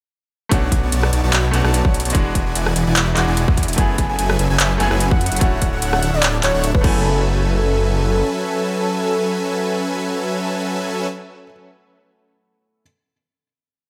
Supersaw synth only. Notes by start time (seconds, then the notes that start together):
0.51 B3 F#4 C#5 D5 A5
0.72 B3 F#4 C#5 D5 G#5
0.83 B3 F#4 C#5 D5 A5
0.92 B3 F#4 C#5 D5 A5
1.13 B3 F#4 C#5 D5 A5
1.24 B3 F#4 C#5 D5 A5
1.33 B3 F#4 C#5 D5 B5
1.54 B3 F#4 C#5 D5 A5
1.64 B3 F#4 C#5 D5 A5
1.85 B3 F#4 C#5 D5
2.05 B3 F#4 C#5 D5 A5
2.15 E3 E4 D5 F#5 G#5
2.35 E3 E4 D5 F#5 G#5
2.46 E3 E4 D5 F#5 G#5
2.55 E3 E4 D5 F#5 G#5
2.76 E3 E4 D5 F#5 G#5
2.87 E3 E4 D5 F#5 G#5
2.96 E3 E4 D5 F#5 B5
3.17 E3 E4 D5 F#5 G#5
3.27 E3 E4 D5 F#5 G#5
3.68 E3 E4 D5 F#5 G#5
3.78 F#3 C#4 A4 B4 E5 G#5
3.98 F#3 C#4 A4 B4 E5 F#5
4.09 F#3 C#4 A4 B4 E5 G#5
4.19 F#3 C#4 A4 B4 E5 G#5
4.39 F#3 C#4 A4 B4 E5 G#5
4.50 F#3 C#4 A4 B4 E5 G#5
4.60 F#3 C#4 A4 B4 E5 A5
4.80 F#3 C#4 A4 B4 E5 G#5
4.91 F#3 C#4 A4 B4 E5 G#5
5.11 F#3 C#4 A4 B4 E5 G#5
5.32 F#3 C#4 A4 B4 E5 G#5
5.41 D4 A4 C#5 E5 F#5
5.62 D4 A4 C#5 E5 F#5
5.73 D4 A4 C#5 E5 F#5
5.82 D4 A4 C#5 E5 F#5
6.02 D4 A4 C#5 E5 F#5
6.13 D4 A4 C#5 E5 F#5
6.23 D4 A4 C#5 E5 A5
6.43 D4 A4 C#5 E5 F#5
6.54 D4 A4 C#5 E5 F#5
6.75 D4 C#5
6.84 F#3 C#4 A4 B4 E5 G#5